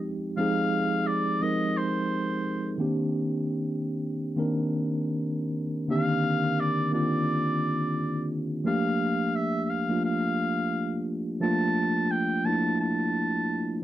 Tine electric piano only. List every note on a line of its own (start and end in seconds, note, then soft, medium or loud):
0.00 0.37 F3 medium
0.00 0.38 G#3 medium
0.00 0.39 C4 medium
0.00 0.39 D#4 medium
0.00 2.80 G4 medium
0.37 1.16 F3 medium
0.37 1.17 G#3 medium
0.37 1.17 C4 medium
0.37 1.17 D#4 medium
0.37 1.18 G#4 medium
1.40 2.44 F3 medium
1.40 2.44 G#3 medium
1.40 2.44 C4 medium
1.40 2.45 D#4 medium
1.40 2.45 A#4 medium
2.78 3.89 D#3 medium
2.78 3.90 A#3 medium
2.78 3.90 C4 medium
2.78 3.91 D4 medium
2.78 3.91 G4 medium
4.36 5.40 D#3 medium
4.36 5.40 A#3 medium
4.36 5.41 C4 medium
4.36 5.41 D4 medium
4.36 5.42 A#4 medium
5.88 5.96 D3 medium
5.88 6.68 A#3 medium
5.88 6.68 C4 medium
5.88 6.69 D4 medium
5.88 6.69 G4 medium
5.94 6.71 D#3 medium
6.92 7.95 D#3 medium
6.92 7.96 A#3 medium
6.92 7.96 C4 medium
6.92 7.97 D4 medium
6.92 7.97 F4 medium
8.64 9.57 F3 medium
8.64 9.58 A3 medium
8.64 9.58 A#3 medium
8.64 9.58 D4 medium
8.64 9.59 G4 medium
9.88 10.92 F3 medium
9.88 10.92 A3 medium
9.88 10.93 A#3 medium
9.88 10.93 D4 medium
9.88 10.93 F4 medium
11.40 12.19 F3 medium
11.40 12.20 A3 medium
11.40 12.20 A#3 medium
11.40 12.21 D4 medium
11.40 12.21 F4 medium
12.44 13.48 F3 medium
12.44 13.48 A3 medium
12.44 13.49 A#3 medium
12.44 13.49 D4 medium
12.44 13.50 E4 medium